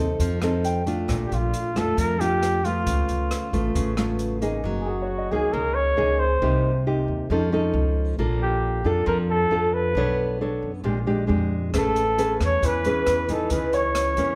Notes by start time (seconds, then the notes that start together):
Already playing: D#2 C3 C4
0.00 D#4 A4
0.20 F2 F3, kick, closed hi-hat
0.42 C4 D#4 A4, cross-stick, closed hi-hat
0.64 G5, closed hi-hat
0.86 A3 D4 F4, closed hi-hat
1.08 A#1 A#2, kick, cross-stick, closed hi-hat
1.27 G4
1.32 A#1 F4, closed hi-hat
1.54 closed hi-hat
1.76 F2 A3 D4 F4 A4, cross-stick, closed hi-hat
1.97 F2 F3 A#4, kick, closed hi-hat
2.20 A3 D4 F4 G4, closed hi-hat
2.43 cross-stick, closed hi-hat
2.65 A3 B3 F4, closed hi-hat
2.87 C#2 C#3, kick, closed hi-hat
3.09 C#2, closed hi-hat
3.31 cross-stick, closed hi-hat
3.53 A1 A3 B3 F4, kick, closed hi-hat
3.75 A1 C#3, kick, closed hi-hat
3.97 A3 B3 F4, cross-stick, closed hi-hat
4.19 closed hi-hat
4.41 A#3 D#4 G#4, closed hi-hat
4.64 F#1 F#3
4.81 G#4
4.86 F#4 G#4
5.02 C#5
5.18 D#5
5.31 C#2 A#3 D#4 G#4
5.53 C#2 C#3 A#4
5.75 C#5
5.97 C#2 A#3 D#4 G#4
6.19 C5
6.42 C2 C3 A#3 D#4 G4
6.87 A#3 D#4 G4
7.08 D#2
7.30 F2 F3 C#4 D#4 A4
7.52 C#4 D#4 A4
7.73 C#2
8.19 A#1 A#3 D4 F4 A4
8.43 G4
8.84 F2 D4 F4 A4
9.06 F2 F3 A#4
9.30 A4
9.51 F2 D4 F4 A4
9.74 B4
9.95 B1 B3 D4 A4 C#5
10.41 D4 A4 C#5
10.62 F#2
10.84 A#1 A#2 G#3 D4 G4
11.06 G#3 D4 G4
11.27 F2 G#3 D4 G4
11.74 A1 A3 C#4 G#4 B4, kick, cross-stick, closed hi-hat
11.78 A4
11.96 closed hi-hat
12.18 C#4 G#4 B4, closed hi-hat
12.40 E2, kick, cross-stick, closed hi-hat
12.45 C#5
12.62 E2 E3 B4, kick, closed hi-hat
12.84 C#4 G#4 B4, closed hi-hat
13.06 E2, cross-stick, closed hi-hat
13.29 E3 B3 D#4, kick, closed hi-hat
13.33 A4
13.50 C#2 C#3 B4, kick, closed hi-hat
13.73 C#5, closed hi-hat
13.95 cross-stick, closed hi-hat
14.17 E2 E3 A#3 C#4, kick, closed hi-hat